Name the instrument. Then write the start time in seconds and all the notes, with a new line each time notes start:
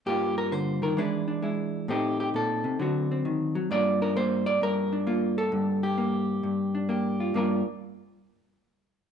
hollow-body jazz guitar
0.06 G2 G3 A#3 F4 G4
0.38 A#4
0.52 D3 C5
0.82 D#3 A#4
0.97 E3 G#3 D4 E4 B4
1.28 D4
1.42 G#3 E4
1.88 A2 A3 C4 D#4 G4
2.20 G4
2.34 A#2 A4
2.64 C3
2.79 D3 F#3 C4 F#4
3.12 C4
3.25 D#3
3.55 F#3
3.71 G2 A#3 D4 F4 D5
4.02 D4 A#4
4.16 A#3 C5
4.46 D5
4.61 G2 A#4
4.93 D4
5.07 A#3 F4
5.38 A4
5.52 G2
5.83 G4
5.98 A#3
6.43 G2
6.75 D4
6.89 A#3 G4
7.20 F4
7.34 G2 A#3 D4 F4 A#4